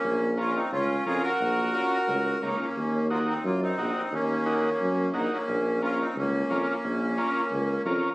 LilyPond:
<<
  \new Staff \with { instrumentName = "Transistor combo organ" } { \time 4/4 \key bes \minor \tempo 4 = 176 r4 <des' f' bes'>8 r4. <des' f' bes'>8 r8 | r4 <des' f' bes'>8 r4. <des' f' bes'>8 r8 | r4 <ees' ges' bes'>8 r4. <ees' ges' bes'>8 r8 | r4 <ees' ges' bes'>8 r4. <ees' ges' bes'>8 r8 |
r4 <des' f' bes'>8 r4. <des' f' bes'>8 r8 | r4 <des' f' bes'>8 r4. <des' f' bes'>8 r8 | }
  \new Staff \with { instrumentName = "Accordion" } { \time 4/4 \key bes \minor <bes des'>4 <des' f'>8 <c' ees'>8 <des' f'>4 <f' aes'>8 <ges' bes'>8~ | <ges' bes'>2. <bes ees'>8 <bes des'>8~ | <bes des'>4 <bes f'>8 <c' ees'>8 <bes f'>8 <c' ees'>4. | <bes des'>2. <bes ees'>8 <bes des'>8~ |
<bes des'>4 <des' f'>8 <c' ees'>8 <bes des'>2~ | <bes des'>2. r4 | }
  \new Staff \with { instrumentName = "Tuba" } { \clef bass \time 4/4 \key bes \minor bes,,2 des,4 f,8 r8 | bes,,4 r4 des,4 des,8 r8 | ees,2 ges,4 bes,,8 r8 | ees,2 ges,4 bes,,8 r8 |
bes,,2 des,4 f,8 r8 | bes,,4 r4 des,4 f,8 r8 | }
>>